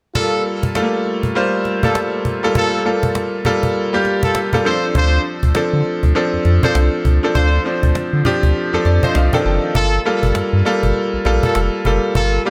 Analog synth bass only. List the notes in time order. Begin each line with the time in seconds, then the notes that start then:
4.95 D2
5.43 D2
5.55 D3
5.73 D3
6.03 D2
6.33 F2
6.45 F2
6.75 C2
7.05 C#2
7.35 D2
7.83 D2
7.95 D3
8.13 D3
8.43 D2
8.73 F2
8.85 F2
9.15 C2
9.45 F#1
9.75 G1
10.23 G1
10.35 G2
10.53 G2
10.83 G1
11.13 A#1
11.25 A#1
11.55 F1
11.85 F#1
12.15 G1